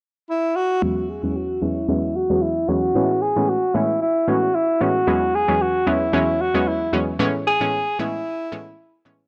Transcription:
0.30 E4
0.56 F#4
0.82 E2 F#3 G#3 B3 C#4
1.09 G#4
1.23 E2 F#3 G#3 B3 C#4
1.36 F#4
1.62 E2 F#3 G#3 B3 C#4 E4
1.88 E2 F#3 G#3 B3 C#4 E4
2.16 F#4
2.30 E2 F#3 G#3 B3 C#4
2.42 E4
2.68 E2 F#3 G#3 B3 C#4 F#4
2.95 A2 E3 G#3 B3 C#4
3.22 G#4
3.36 A2 E3 G#3 B3 C#4
3.49 F#4
3.74 A2 E3 G#3 B3 C#4 E4
4.02 E4
4.28 A2 E3 G#3 B3 C#4 F#4
4.55 E4
4.81 A2 E3 G#3 B3 C#4 F#4
5.07 E2 F#3 G#3 B3 C#4
5.35 G#4
5.48 E2 F#3 G#3 B3 C#4
5.61 F#4
5.86 E2 F#3 G#3 B3 C#4 E4
6.13 E2 F#3 G#3 B3 C#4 E4
6.41 F#4
6.54 E2 F#3 G#3 B3 C#4
6.68 E4
6.93 E2 F#3 G#3 B3 C#4
7.19 A2 E3 G#3 B3 C#4
7.47 G#4
7.60 A2 E3 G#3 B3 C#4
7.99 A2 E3 G#3 B3 C#4 E4
8.52 A2 E3 G#3 B3 C#4
9.05 A2 E3 G#3 B3 C#4

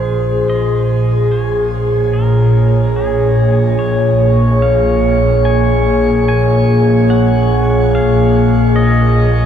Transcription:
Already playing: A#1 A#2 F3 G#4 C5
0.50 A#1 D#5
1.32 A#3 C#5
1.57 C#5
2.13 A#4
2.96 G#4
3.79 C#5
4.62 F5
5.45 G#5
6.29 G#5
7.10 F#5
7.95 F5
8.35 D#5
8.76 D#5

